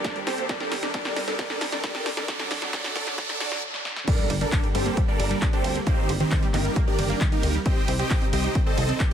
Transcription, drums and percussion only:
0.04 kick, snare, closed hi-hat
0.16 closed hi-hat
0.27 snare, open hi-hat
0.38 closed hi-hat
0.49 kick, snare, closed hi-hat
0.60 snare
0.72 snare, open hi-hat
0.83 snare, closed hi-hat
0.94 kick, snare, closed hi-hat
1.05 snare, closed hi-hat
1.16 snare, open hi-hat
1.28 snare, closed hi-hat
1.39 kick, snare, closed hi-hat
1.50 snare
1.61 snare, open hi-hat
1.72 snare, closed hi-hat
1.84 kick, snare, closed hi-hat
1.95 snare, closed hi-hat
2.06 snare, open hi-hat
2.17 snare, closed hi-hat
2.28 kick, snare, closed hi-hat
2.40 snare, closed hi-hat
2.51 snare, open hi-hat
2.62 snare, closed hi-hat
2.73 kick, snare, closed hi-hat
2.84 snare, closed hi-hat
2.96 kick, snare, open hi-hat
3.07 snare, closed hi-hat
3.18 kick, snare, closed hi-hat
3.29 snare, closed hi-hat
3.40 snare, open hi-hat
3.52 snare, closed hi-hat
3.74 snare
3.85 snare
3.96 snare
4.08 kick, closed hi-hat, crash
4.30 open hi-hat, ride
4.41 closed hi-hat
4.52 kick, clap, closed hi-hat
4.64 closed hi-hat
4.75 open hi-hat, ride
4.86 closed hi-hat
4.97 kick, closed hi-hat
5.20 open hi-hat, ride
5.31 closed hi-hat
5.42 kick, clap, closed hi-hat
5.53 closed hi-hat
5.64 open hi-hat, ride
5.76 closed hi-hat
5.87 kick, closed hi-hat
6.09 open hi-hat, ride
6.20 closed hi-hat
6.31 kick, clap, closed hi-hat
6.43 closed hi-hat
6.54 clap, open hi-hat, ride
6.65 closed hi-hat
6.76 kick, closed hi-hat
6.99 open hi-hat, ride
7.10 closed hi-hat
7.21 kick, clap, closed hi-hat
7.32 closed hi-hat
7.43 open hi-hat, ride
7.54 closed hi-hat
7.66 kick, closed hi-hat
7.88 open hi-hat, ride
7.99 closed hi-hat
8.10 kick, clap, closed hi-hat
8.22 closed hi-hat
8.33 open hi-hat, ride
8.44 closed hi-hat
8.55 kick, closed hi-hat
8.78 open hi-hat, ride
8.89 closed hi-hat
9.00 kick, clap, closed hi-hat

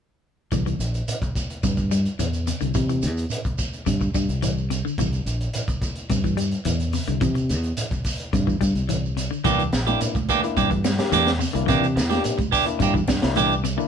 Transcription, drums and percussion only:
0.52 kick, closed hi-hat, shekere
0.67 closed hi-hat, shekere
0.80 closed hi-hat, shekere
0.94 closed hi-hat, shekere
1.08 closed hi-hat, shekere
1.22 kick, closed hi-hat, shekere
1.35 kick, closed hi-hat, shekere
1.50 closed hi-hat, shekere
1.63 kick, closed hi-hat, shekere
1.77 kick, closed hi-hat, shekere
1.91 closed hi-hat, shekere
2.05 closed hi-hat, shekere
2.19 closed hi-hat, shekere
2.33 closed hi-hat, shekere
2.47 closed hi-hat, shekere
2.61 closed hi-hat, shekere
2.74 kick, closed hi-hat, shekere
2.89 closed hi-hat, shekere
3.02 closed hi-hat, shekere
3.17 closed hi-hat, shekere
3.30 closed hi-hat, shekere
3.44 kick, closed hi-hat, shekere
3.58 kick, closed hi-hat, shekere
3.73 closed hi-hat, shekere
3.86 kick, closed hi-hat, shekere
4.01 kick, shekere
4.14 kick, closed hi-hat, shekere
4.29 closed hi-hat, shekere
4.42 closed hi-hat, shekere
4.58 shekere
4.71 closed hi-hat, shekere
4.87 shekere
4.98 kick, closed hi-hat, shekere
5.12 closed hi-hat, shekere
5.26 closed hi-hat, shekere
5.41 closed hi-hat, shekere
5.53 closed hi-hat, shekere
5.68 kick, closed hi-hat, shekere
5.82 kick, closed hi-hat, shekere
5.95 closed hi-hat, shekere
6.10 kick, closed hi-hat, shekere
6.24 kick, closed hi-hat, shekere
6.37 closed hi-hat, shekere
6.51 closed hi-hat, shekere
6.65 closed hi-hat, shekere
6.80 closed hi-hat, shekere
6.93 open hi-hat, shekere
7.07 closed hi-hat, shekere
7.21 kick, closed hi-hat, shekere
7.35 closed hi-hat, shekere
7.49 closed hi-hat, shekere
7.63 closed hi-hat, shekere
7.77 closed hi-hat, shekere
7.91 kick, closed hi-hat, shekere
8.04 kick, open hi-hat, shekere
8.19 closed hi-hat, shekere
8.33 kick, closed hi-hat, shekere
8.47 kick, shekere
8.61 kick, closed hi-hat, shekere
8.75 closed hi-hat, shekere
8.89 closed hi-hat, shekere
9.05 shekere
9.17 closed hi-hat, shekere
9.32 shekere
9.44 kick, closed hi-hat, high conga, shekere
9.59 closed hi-hat, shekere
9.72 snare, closed hi-hat, shekere
9.87 closed hi-hat, high conga, shekere
10.01 closed hi-hat, high conga, shekere
10.15 kick, closed hi-hat, high conga, shekere
10.29 kick, closed hi-hat, shekere
10.44 closed hi-hat, shekere
10.57 kick, closed hi-hat, high conga, shekere
10.71 kick, closed hi-hat, shekere
10.84 snare, closed hi-hat, high conga, shekere
10.98 snare, closed hi-hat, shekere
11.12 closed hi-hat, high conga, shekere
11.27 snare, closed hi-hat, high conga, shekere
11.41 open hi-hat, shekere
11.55 closed hi-hat, shekere
11.68 kick, snare, closed hi-hat, high conga, shekere
11.84 closed hi-hat, shekere
11.97 snare, closed hi-hat, shekere
12.11 snare, closed hi-hat, high conga, shekere
12.24 closed hi-hat, high conga, shekere
12.38 kick, closed hi-hat, high conga, shekere
12.52 kick, open hi-hat, shekere
12.66 closed hi-hat, shekere
12.80 kick, closed hi-hat, shekere
12.94 kick, shekere
13.08 kick, snare, closed hi-hat, high conga, shekere
13.22 snare, closed hi-hat, shekere
13.35 closed hi-hat, high conga, shekere
13.52 shekere
13.65 closed hi-hat, shekere
13.80 shekere

